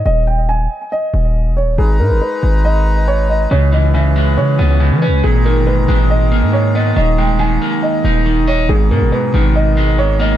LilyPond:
<<
  \new Staff \with { instrumentName = "Grand piano" } { \time 4/4 \key gis \minor \tempo 4 = 139 dis''8 g''8 gis''4 dis''4. cis''8 | gis'8 ais'8 b'4 dis''4 cis''8 dis''8 | cis''8 dis''8 e''4 cis''4. b'8 | gis'8 ais'8 b'4 dis''4 cis''8 dis''8 |
dis''8 g''8 gis''4 dis''4. cis''8 | gis'8 ais'8 b'4 dis''4 cis''8 dis''8 | }
  \new Staff \with { instrumentName = "Harmonium" } { \time 4/4 \key gis \minor << { r1 | b'1~ | b'1 | ais''1~ |
ais''1~ | ais''1 | } \\ { r1 | ais''1 | gis'1~ | gis'1~ |
gis'1 | gis'1 | } >> }
  \new Staff \with { instrumentName = "Harmonium" } { \clef bass \time 4/4 \key gis \minor << { r1 | dis'1 | cis'1 | gis1 |
ais1 | b1 | } \\ { r1 | gis1 | e1 | dis1 |
dis1~ | dis1 | } >> }
  \new Staff \with { instrumentName = "Clean electric guitar" } { \clef bass \time 4/4 \key gis \minor r1 | r1 | cis8 e8 cis8 gis4 b8 cis8 cis'8 | ais,8 dis8 gis,8 gis4 ais8 gis,8 b8 |
dis8 gis8 dis8 ais4 dis'8 dis8 dis''8 | gis,8 b,8 gis,8 dis4 gis8 gis,8 ais8 | }
  \new Staff \with { instrumentName = "808-style bass" } { \clef bass \time 4/4 \key gis \minor dis,,4. r4 dis,,8. e,,16. dis,,16. | gis,,8 gis,16 gis,,16 r8 gis,,2~ gis,,8 | cis,2 cis8 cis,8. e16. cis,16. | gis,,8. g,,8. gis,,4~ gis,,16 gis,4~ gis,16 |
dis,,4. r4 dis,,8. e,,16. dis,,16. | gis,,8 gis,16 gis,,16 r8 gis,,2~ gis,,8 | }
>>